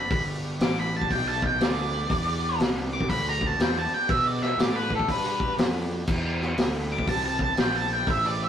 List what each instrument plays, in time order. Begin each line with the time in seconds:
Already playing: tonewheel organ D4 F#4 G4 B4, lead electric guitar B5
0.11 fingered electric bass G1, kick, open hi-hat
0.60 fingered electric bass A1, lead electric guitar D6, snare, open hi-hat
0.80 lead electric guitar B5
0.97 lead electric guitar A5
1.01 kick
1.11 fingered electric bass B1, lead electric guitar G5, kick, open hi-hat
1.28 lead electric guitar A5
1.42 lead electric guitar G5, kick
1.60 fingered electric bass D2, lead electric guitar D5, snare, open hi-hat
2.10 fingered electric bass E2, tonewheel organ D4 F#4 G4 B4, kick, open hi-hat
2.60 fingered electric bass C2, snare, open hi-hat
2.93 lead electric guitar D6
3.01 kick
3.10 fingered electric bass D2, lead electric guitar B5, kick, open hi-hat
3.29 lead electric guitar A#5
3.41 kick
3.46 lead electric guitar A5
3.59 fingered electric bass E2, lead electric guitar G5, snare, open hi-hat
3.79 lead electric guitar A5
3.90 lead electric guitar G5, muted fingered electric bass stroke
4.09 fingered electric bass B2, lead electric guitar E5, kick, open hi-hat
4.27 lead electric guitar D5
4.42 lead electric guitar E5, snare
4.57 fingered electric bass A2, lead electric guitar D5, snare, open hi-hat
4.76 lead electric guitar B4
4.90 kick
4.95 lead electric guitar A4
5.00 kick
5.08 fingered electric bass G2, lead electric guitar B4, kick, open hi-hat
5.27 lead electric guitar B4
5.40 kick
5.58 fingered electric bass F2, snare, open hi-hat
6.07 fingered electric bass E2, tonewheel organ C4 E4 G4 B4, kick, crash
6.41 snare
6.57 fingered electric bass D2, snare, open hi-hat
6.92 lead electric guitar D6
6.98 kick
7.07 fingered electric bass C2, lead electric guitar A5, kick, open hi-hat
7.26 lead electric guitar A5
7.39 lead electric guitar A5, kick
7.57 fingered electric bass A#1, lead electric guitar G5, snare, open hi-hat
7.76 lead electric guitar A5
7.93 lead electric guitar G5
8.07 fingered electric bass A1, lead electric guitar E5, kick, open hi-hat
8.26 lead electric guitar D5
8.44 lead electric guitar E5